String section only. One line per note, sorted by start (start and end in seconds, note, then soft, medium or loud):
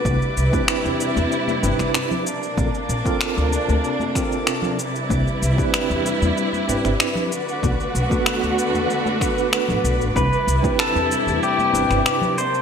0.00 2.22 B4 medium
0.05 2.24 C3 medium
0.05 2.24 G3 medium
0.05 2.24 E4 medium
2.26 7.28 C3 medium
2.26 4.76 A#3 medium
2.26 4.76 D4 medium
4.79 7.29 G3 medium
4.79 7.29 E4 medium
4.79 12.33 B4 medium
7.31 10.13 D3 medium
7.31 10.13 A3 medium
7.31 10.13 F#4 medium
10.15 12.62 C3 medium
10.15 12.35 G3 medium
10.15 12.34 E4 medium
12.37 12.62 A#3 medium
12.37 12.62 D4 medium